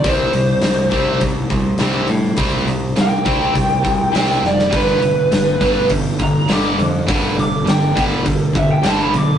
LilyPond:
<<
  \new Staff \with { instrumentName = "Lead electric guitar" } { \time 4/4 \key g \major \tempo 4 = 102 c''2 r2 | r4 g''2 g''16 g''16 d''8 | b'2 r8 bes''8 d'''8 r8 | r8 d'''8 g''8 r4 e''16 g''16 a''16 b''16 d'''8 | }
  \new Staff \with { instrumentName = "Analog synth pad" } { \time 4/4 \key g \major r1 | r1 | <g d' a'>1~ | <g d' a'>1 | }
  \new Staff \with { instrumentName = "Distorted electric guitar" } { \clef bass \time 4/4 \key g \major <c g c'>8 <c g>8 <c g>8 <c g c'>8 <c g>8 <c g>8 <c g c'>8 <c g>8 | <c g c'>8 <c g>8 <c g>8 <c g c'>8 <c g>8 <c g>8 <c g c'>8 <c g>8 | <g, d g>8 <g, d>8 <g, d>8 <g, d g>8 <g, d>8 <g, d>8 <g, d g>8 <g, d>8 | <g, d g>8 <g, d>8 <g, d>8 <g, d g>8 <g, d>8 <g, d>8 <g, d g>8 <g, d>8 | }
  \new Staff \with { instrumentName = "Overdriven electric guitar" } { \clef bass \time 4/4 \key g \major <c g c'>8 <c g>8 <c g>8 <c g c'>8 <c g>8 <c g>8 <c g c'>8 <c g>8 | <c g c'>8 <c g>8 <c g>8 <c g c'>8 <c g>8 <c g>8 <c g c'>8 <c g>8 | <g, d g>8 <g, d>8 <g, d>8 <g, d g>8 <g, d>8 <g, d>8 <g, d g>8 <g, d>8 | <g, d g>8 <g, d>8 <g, d>8 <g, d g>8 <g, d>8 <g, d>8 <g, d g>8 <g, d>8 | }
  \new Staff \with { instrumentName = "Picked electric bass" } { \clef bass \time 4/4 \key g \major c,8 c,8 c,8 c,8 c,8 c,8 c,8 a,8 | c,8 c,8 c,8 c,8 c,8 c,8 c,8 f,,8 | g,,8 g,,8 g,,8 g,,8 g,,8 g,,8 g,,8 f,8 | g,,8 g,,8 g,,8 g,,8 g,,8 g,,8 g,,8 b,,8 | }
  \new DrumStaff \with { instrumentName = "Drums" } \drummode { \time 4/4 <hho bd>8 hho8 <hho sn>8 <hho bd>8 <hho bd>8 <hho bd>8 <hho sn>8 hho8 | <hho bd>8 hho8 <hho sn>8 <hho bd>8 <hho bd>8 <hho bd>8 <hho sn>8 sn16 sn16 | <hho bd>8 hho8 <hho sn>8 <hho bd>8 <hho bd>8 <hho bd>8 <hho sn>8 hho8 | <hho bd>8 hho8 <hho sn>8 <hho bd>8 <hho bd>8 <hho bd>8 <hho sn>16 sn16 hho8 | }
>>